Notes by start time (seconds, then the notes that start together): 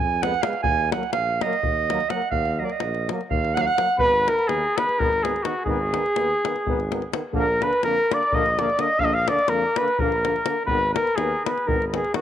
Already playing: G#5
0.00 F2
0.22 G#3 B3 F#5, davul high
0.34 davul high
0.42 G#3 B3 F5, davul high
0.53 davul high
0.63 D#2 G#5, davul low
0.92 F#3 A#3 F#5, davul high
1.03 davul high
1.13 A#1 F5, davul high
1.41 F#3 D#5, davul high
1.46 A#3
1.53 davul high
1.63 D#2, davul low
1.90 F#3 A#3, davul high
2.00 davul high
2.10 F#3 A#3 F#5, davul high
2.22 davul high
2.31 D#2 F5, davul low
2.45 davul high
2.59 F#3 A#3 D#5
2.65 D5
2.69 D#5, davul high
2.80 A#1, davul high
2.95 davul high
3.09 F#3 A#3, davul high
3.21 davul high
3.30 D#2 F5, davul low
3.45 davul high
3.55 F#3 A#3 F#5, davul high
3.62 F5
3.67 F#5, davul high
3.78 F#3 A#3, davul high
3.88 davul high
3.98 G#1 D#3 B3 B4, davul low
4.27 D#3 B3 A#4, davul high
4.39 davul high
4.48 D#2 D#3 B3 G#4, davul high
4.77 D#3 B3 B4, davul high
4.89 davul high
4.99 G#1 D#3 B3 A#4, davul low
5.13 davul high
5.23 D#3 B3 G#4, davul high
5.36 davul high
5.43 D#3 B3 F#4, davul high
5.65 G#1 D#3 B3 G#4, davul low
5.94 D#3 B3, davul high
6.06 davul high
6.16 D#2 D#3 B3, davul high
6.44 D#3 B3, davul high
6.56 davul high
6.66 G#1 D#3 B3, davul low
6.80 davul high
6.91 D#3 B3, davul high
7.02 davul high
7.12 D#3 B3, davul high
7.33 A#1 D3 A#3 A#4, davul low
7.61 D3 A#3 B4, davul high
7.73 davul high
7.83 F2 D3 A#3 A#4, davul high
8.11 D3 A#3 D5, davul high
8.23 davul high
8.32 A#1 D3 A#3 D#5, davul low
8.46 davul high
8.57 D3 A#3 D5, davul high
8.70 davul high
8.78 D3 A#3 D#5, davul high
8.99 A#1 D3 A#3 F5, davul low
9.05 D#5
9.13 F5, davul high
9.28 D3 A#3 D5, davul high
9.39 davul high
9.48 F2 D3 A#3 A#4, davul high
9.62 davul high
9.76 D3 A#3 B4, davul high
9.88 davul high
9.99 A#1 D3 A#3 A#4, davul low
10.12 davul high
10.24 D3 A#3, davul high
10.36 davul high
10.45 D3 A#3, davul high
10.66 G#1 D#3 B3 B4, davul low
10.93 D#3 A#4, davul high
10.98 B3
11.07 davul high
11.16 D#2 D#3 B3 G#4, davul high
11.44 D#3 B4, davul high
11.48 B3
11.58 davul high
11.67 G#1 D#3 B3 A#4, davul low
11.82 davul high
11.87 A#4
11.92 D#3 B3 G#4, davul high
12.05 davul high
12.13 D#3 B3 F#4, davul high